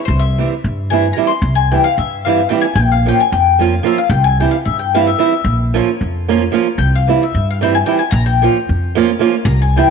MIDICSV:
0, 0, Header, 1, 4, 480
1, 0, Start_track
1, 0, Tempo, 535714
1, 67, Time_signature, 5, 3, 24, 8
1, 8871, End_track
2, 0, Start_track
2, 0, Title_t, "Mandolin"
2, 0, Program_c, 0, 25
2, 46, Note_on_c, 0, 72, 87
2, 175, Note_on_c, 0, 76, 81
2, 202, Note_off_c, 0, 72, 0
2, 427, Note_off_c, 0, 76, 0
2, 809, Note_on_c, 0, 80, 81
2, 1010, Note_off_c, 0, 80, 0
2, 1013, Note_on_c, 0, 82, 76
2, 1058, Note_off_c, 0, 82, 0
2, 1139, Note_on_c, 0, 84, 90
2, 1389, Note_off_c, 0, 84, 0
2, 1392, Note_on_c, 0, 80, 88
2, 1534, Note_off_c, 0, 80, 0
2, 1538, Note_on_c, 0, 79, 84
2, 1583, Note_off_c, 0, 79, 0
2, 1649, Note_on_c, 0, 77, 89
2, 1761, Note_off_c, 0, 77, 0
2, 1774, Note_on_c, 0, 76, 72
2, 2011, Note_off_c, 0, 76, 0
2, 2015, Note_on_c, 0, 77, 72
2, 2227, Note_off_c, 0, 77, 0
2, 2231, Note_on_c, 0, 79, 69
2, 2340, Note_off_c, 0, 79, 0
2, 2343, Note_on_c, 0, 80, 81
2, 2464, Note_off_c, 0, 80, 0
2, 2467, Note_on_c, 0, 79, 87
2, 2600, Note_off_c, 0, 79, 0
2, 2612, Note_on_c, 0, 77, 73
2, 2757, Note_off_c, 0, 77, 0
2, 2764, Note_on_c, 0, 79, 87
2, 2865, Note_off_c, 0, 79, 0
2, 2869, Note_on_c, 0, 80, 78
2, 2972, Note_off_c, 0, 80, 0
2, 2981, Note_on_c, 0, 79, 86
2, 3238, Note_off_c, 0, 79, 0
2, 3242, Note_on_c, 0, 77, 68
2, 3458, Note_off_c, 0, 77, 0
2, 3462, Note_on_c, 0, 76, 73
2, 3559, Note_off_c, 0, 76, 0
2, 3567, Note_on_c, 0, 77, 85
2, 3671, Note_off_c, 0, 77, 0
2, 3675, Note_on_c, 0, 79, 86
2, 3796, Note_off_c, 0, 79, 0
2, 3800, Note_on_c, 0, 80, 88
2, 3942, Note_off_c, 0, 80, 0
2, 3946, Note_on_c, 0, 79, 72
2, 4038, Note_off_c, 0, 79, 0
2, 4042, Note_on_c, 0, 77, 75
2, 4087, Note_off_c, 0, 77, 0
2, 4170, Note_on_c, 0, 76, 82
2, 4290, Note_off_c, 0, 76, 0
2, 4293, Note_on_c, 0, 79, 72
2, 4431, Note_off_c, 0, 79, 0
2, 4435, Note_on_c, 0, 77, 75
2, 4542, Note_off_c, 0, 77, 0
2, 4546, Note_on_c, 0, 76, 77
2, 4981, Note_off_c, 0, 76, 0
2, 6079, Note_on_c, 0, 79, 83
2, 6207, Note_off_c, 0, 79, 0
2, 6231, Note_on_c, 0, 77, 72
2, 6474, Note_off_c, 0, 77, 0
2, 6478, Note_on_c, 0, 76, 77
2, 6720, Note_off_c, 0, 76, 0
2, 6724, Note_on_c, 0, 77, 75
2, 6769, Note_off_c, 0, 77, 0
2, 6834, Note_on_c, 0, 79, 78
2, 6936, Note_off_c, 0, 79, 0
2, 6941, Note_on_c, 0, 80, 96
2, 7039, Note_off_c, 0, 80, 0
2, 7043, Note_on_c, 0, 79, 87
2, 7154, Note_off_c, 0, 79, 0
2, 7158, Note_on_c, 0, 80, 89
2, 7262, Note_off_c, 0, 80, 0
2, 7265, Note_on_c, 0, 82, 109
2, 7397, Note_off_c, 0, 82, 0
2, 7400, Note_on_c, 0, 79, 88
2, 8103, Note_off_c, 0, 79, 0
2, 8468, Note_on_c, 0, 82, 89
2, 8613, Note_off_c, 0, 82, 0
2, 8617, Note_on_c, 0, 80, 81
2, 8746, Note_off_c, 0, 80, 0
2, 8758, Note_on_c, 0, 79, 90
2, 8861, Note_off_c, 0, 79, 0
2, 8871, End_track
3, 0, Start_track
3, 0, Title_t, "Nylon-string guitar"
3, 0, Program_c, 1, 24
3, 344, Note_on_c, 1, 52, 51
3, 350, Note_on_c, 1, 55, 56
3, 356, Note_on_c, 1, 60, 57
3, 360, Note_on_c, 1, 64, 55
3, 471, Note_off_c, 1, 52, 0
3, 474, Note_off_c, 1, 55, 0
3, 478, Note_off_c, 1, 60, 0
3, 479, Note_off_c, 1, 64, 0
3, 820, Note_on_c, 1, 52, 68
3, 825, Note_on_c, 1, 55, 64
3, 832, Note_on_c, 1, 60, 70
3, 839, Note_on_c, 1, 64, 75
3, 946, Note_off_c, 1, 52, 0
3, 949, Note_off_c, 1, 55, 0
3, 952, Note_off_c, 1, 60, 0
3, 956, Note_off_c, 1, 64, 0
3, 1046, Note_on_c, 1, 52, 70
3, 1051, Note_on_c, 1, 55, 64
3, 1057, Note_on_c, 1, 60, 55
3, 1060, Note_on_c, 1, 64, 81
3, 1168, Note_off_c, 1, 52, 0
3, 1171, Note_off_c, 1, 55, 0
3, 1173, Note_off_c, 1, 60, 0
3, 1175, Note_off_c, 1, 64, 0
3, 1538, Note_on_c, 1, 52, 52
3, 1544, Note_on_c, 1, 55, 49
3, 1553, Note_on_c, 1, 60, 47
3, 1557, Note_on_c, 1, 64, 54
3, 1669, Note_off_c, 1, 52, 0
3, 1672, Note_off_c, 1, 55, 0
3, 1676, Note_off_c, 1, 60, 0
3, 1678, Note_off_c, 1, 64, 0
3, 2026, Note_on_c, 1, 52, 74
3, 2036, Note_on_c, 1, 55, 72
3, 2040, Note_on_c, 1, 60, 60
3, 2046, Note_on_c, 1, 64, 80
3, 2150, Note_off_c, 1, 52, 0
3, 2155, Note_off_c, 1, 55, 0
3, 2157, Note_off_c, 1, 60, 0
3, 2159, Note_off_c, 1, 64, 0
3, 2238, Note_on_c, 1, 52, 67
3, 2242, Note_on_c, 1, 55, 61
3, 2245, Note_on_c, 1, 60, 63
3, 2254, Note_on_c, 1, 64, 77
3, 2365, Note_off_c, 1, 52, 0
3, 2367, Note_off_c, 1, 55, 0
3, 2368, Note_off_c, 1, 60, 0
3, 2372, Note_off_c, 1, 64, 0
3, 2739, Note_on_c, 1, 53, 53
3, 2746, Note_on_c, 1, 58, 57
3, 2753, Note_on_c, 1, 61, 61
3, 2757, Note_on_c, 1, 65, 60
3, 2870, Note_off_c, 1, 53, 0
3, 2873, Note_off_c, 1, 58, 0
3, 2877, Note_off_c, 1, 61, 0
3, 2878, Note_off_c, 1, 65, 0
3, 3217, Note_on_c, 1, 53, 66
3, 3224, Note_on_c, 1, 58, 69
3, 3229, Note_on_c, 1, 61, 58
3, 3234, Note_on_c, 1, 65, 76
3, 3345, Note_off_c, 1, 53, 0
3, 3350, Note_off_c, 1, 58, 0
3, 3350, Note_off_c, 1, 61, 0
3, 3354, Note_off_c, 1, 65, 0
3, 3433, Note_on_c, 1, 53, 77
3, 3439, Note_on_c, 1, 58, 72
3, 3447, Note_on_c, 1, 61, 61
3, 3454, Note_on_c, 1, 65, 79
3, 3562, Note_off_c, 1, 53, 0
3, 3566, Note_off_c, 1, 58, 0
3, 3570, Note_off_c, 1, 61, 0
3, 3573, Note_off_c, 1, 65, 0
3, 3941, Note_on_c, 1, 52, 59
3, 3947, Note_on_c, 1, 55, 52
3, 3952, Note_on_c, 1, 60, 54
3, 3957, Note_on_c, 1, 64, 66
3, 4072, Note_off_c, 1, 52, 0
3, 4075, Note_off_c, 1, 55, 0
3, 4076, Note_off_c, 1, 60, 0
3, 4079, Note_off_c, 1, 64, 0
3, 4429, Note_on_c, 1, 52, 79
3, 4433, Note_on_c, 1, 55, 64
3, 4440, Note_on_c, 1, 60, 68
3, 4444, Note_on_c, 1, 64, 80
3, 4553, Note_off_c, 1, 52, 0
3, 4553, Note_off_c, 1, 55, 0
3, 4558, Note_off_c, 1, 60, 0
3, 4560, Note_off_c, 1, 64, 0
3, 4646, Note_on_c, 1, 52, 76
3, 4648, Note_on_c, 1, 55, 59
3, 4652, Note_on_c, 1, 60, 54
3, 4657, Note_on_c, 1, 64, 83
3, 4770, Note_off_c, 1, 52, 0
3, 4770, Note_off_c, 1, 55, 0
3, 4773, Note_off_c, 1, 60, 0
3, 4775, Note_off_c, 1, 64, 0
3, 5142, Note_on_c, 1, 53, 78
3, 5148, Note_on_c, 1, 58, 64
3, 5153, Note_on_c, 1, 61, 65
3, 5158, Note_on_c, 1, 65, 78
3, 5273, Note_off_c, 1, 53, 0
3, 5274, Note_off_c, 1, 58, 0
3, 5279, Note_off_c, 1, 61, 0
3, 5279, Note_off_c, 1, 65, 0
3, 5631, Note_on_c, 1, 53, 78
3, 5635, Note_on_c, 1, 58, 87
3, 5639, Note_on_c, 1, 61, 81
3, 5645, Note_on_c, 1, 65, 85
3, 5754, Note_off_c, 1, 58, 0
3, 5755, Note_off_c, 1, 53, 0
3, 5758, Note_off_c, 1, 61, 0
3, 5761, Note_off_c, 1, 65, 0
3, 5840, Note_on_c, 1, 53, 74
3, 5850, Note_on_c, 1, 58, 75
3, 5855, Note_on_c, 1, 61, 73
3, 5859, Note_on_c, 1, 65, 85
3, 5967, Note_off_c, 1, 53, 0
3, 5972, Note_off_c, 1, 58, 0
3, 5975, Note_off_c, 1, 61, 0
3, 5976, Note_off_c, 1, 65, 0
3, 6340, Note_on_c, 1, 52, 47
3, 6347, Note_on_c, 1, 55, 47
3, 6354, Note_on_c, 1, 60, 52
3, 6358, Note_on_c, 1, 64, 73
3, 6472, Note_off_c, 1, 52, 0
3, 6475, Note_off_c, 1, 55, 0
3, 6479, Note_off_c, 1, 60, 0
3, 6480, Note_off_c, 1, 64, 0
3, 6818, Note_on_c, 1, 52, 64
3, 6827, Note_on_c, 1, 55, 63
3, 6828, Note_on_c, 1, 60, 65
3, 6841, Note_on_c, 1, 64, 74
3, 6947, Note_off_c, 1, 52, 0
3, 6952, Note_off_c, 1, 55, 0
3, 6952, Note_off_c, 1, 60, 0
3, 6959, Note_off_c, 1, 64, 0
3, 7043, Note_on_c, 1, 52, 68
3, 7047, Note_on_c, 1, 55, 61
3, 7054, Note_on_c, 1, 60, 61
3, 7060, Note_on_c, 1, 64, 72
3, 7170, Note_off_c, 1, 52, 0
3, 7170, Note_off_c, 1, 55, 0
3, 7174, Note_off_c, 1, 60, 0
3, 7177, Note_off_c, 1, 64, 0
3, 7543, Note_on_c, 1, 53, 57
3, 7548, Note_on_c, 1, 58, 54
3, 7554, Note_on_c, 1, 61, 55
3, 7561, Note_on_c, 1, 65, 72
3, 7674, Note_off_c, 1, 53, 0
3, 7675, Note_off_c, 1, 58, 0
3, 7678, Note_off_c, 1, 61, 0
3, 7682, Note_off_c, 1, 65, 0
3, 8022, Note_on_c, 1, 53, 92
3, 8032, Note_on_c, 1, 58, 88
3, 8036, Note_on_c, 1, 61, 80
3, 8039, Note_on_c, 1, 65, 105
3, 8149, Note_off_c, 1, 53, 0
3, 8154, Note_off_c, 1, 58, 0
3, 8156, Note_off_c, 1, 61, 0
3, 8157, Note_off_c, 1, 65, 0
3, 8236, Note_on_c, 1, 53, 84
3, 8245, Note_on_c, 1, 58, 81
3, 8249, Note_on_c, 1, 61, 72
3, 8251, Note_on_c, 1, 65, 89
3, 8365, Note_off_c, 1, 53, 0
3, 8369, Note_off_c, 1, 58, 0
3, 8372, Note_off_c, 1, 61, 0
3, 8372, Note_off_c, 1, 65, 0
3, 8749, Note_on_c, 1, 52, 60
3, 8756, Note_on_c, 1, 55, 56
3, 8762, Note_on_c, 1, 60, 58
3, 8766, Note_on_c, 1, 64, 67
3, 8871, Note_off_c, 1, 52, 0
3, 8871, Note_off_c, 1, 55, 0
3, 8871, Note_off_c, 1, 60, 0
3, 8871, Note_off_c, 1, 64, 0
3, 8871, End_track
4, 0, Start_track
4, 0, Title_t, "Upright bass"
4, 0, Program_c, 2, 32
4, 71, Note_on_c, 2, 36, 95
4, 375, Note_off_c, 2, 36, 0
4, 576, Note_on_c, 2, 43, 85
4, 991, Note_off_c, 2, 43, 0
4, 1270, Note_on_c, 2, 36, 98
4, 1575, Note_off_c, 2, 36, 0
4, 1771, Note_on_c, 2, 43, 76
4, 2188, Note_off_c, 2, 43, 0
4, 2468, Note_on_c, 2, 34, 103
4, 2774, Note_off_c, 2, 34, 0
4, 2977, Note_on_c, 2, 41, 95
4, 3393, Note_off_c, 2, 41, 0
4, 3669, Note_on_c, 2, 36, 108
4, 3974, Note_off_c, 2, 36, 0
4, 4175, Note_on_c, 2, 43, 77
4, 4592, Note_off_c, 2, 43, 0
4, 4878, Note_on_c, 2, 34, 99
4, 5181, Note_off_c, 2, 34, 0
4, 5384, Note_on_c, 2, 41, 78
4, 5798, Note_off_c, 2, 41, 0
4, 6075, Note_on_c, 2, 36, 97
4, 6379, Note_off_c, 2, 36, 0
4, 6580, Note_on_c, 2, 43, 87
4, 6996, Note_off_c, 2, 43, 0
4, 7278, Note_on_c, 2, 34, 99
4, 7581, Note_off_c, 2, 34, 0
4, 7787, Note_on_c, 2, 41, 79
4, 8200, Note_off_c, 2, 41, 0
4, 8467, Note_on_c, 2, 36, 104
4, 8773, Note_off_c, 2, 36, 0
4, 8871, End_track
0, 0, End_of_file